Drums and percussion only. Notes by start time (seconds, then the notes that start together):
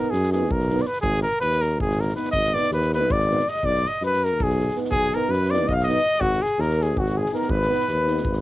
0.13 snare
0.23 snare
0.32 snare
0.51 kick
0.60 snare
0.70 snare
0.78 snare
0.85 snare
0.93 snare
1.03 kick
1.15 snare
1.23 snare
1.41 snare
1.52 snare
1.62 snare
1.80 kick
1.90 snare
2.01 snare
2.09 snare
2.16 snare
2.25 snare
2.33 kick
2.44 snare
2.56 snare
2.63 snare
2.71 snare
2.82 snare
2.93 snare
3.10 kick
3.20 snare
3.31 snare
3.39 snare
3.48 snare
3.55 snare
3.63 kick
3.74 snare
3.85 snare
4.02 snare
4.13 snare
4.24 snare
4.40 kick
4.50 snare
4.60 snare
4.69 snare
4.76 snare
4.85 snare
4.92 kick
5.03 snare
5.13 snare
5.32 snare
5.43 snare
5.53 snare
5.69 kick
5.80 snare
5.89 snare
5.98 snare
6.06 snare
6.15 snare
6.21 kick
6.33 snare
6.44 snare
6.59 snare
6.70 snare
6.81 snare
6.97 kick
7.06 snare
7.26 snare
7.34 snare
7.42 snare
7.49 kick
7.62 snare
7.73 snare
7.80 snare
7.88 snare
8.07 snare
8.17 snare
8.25 kick
8.33 snare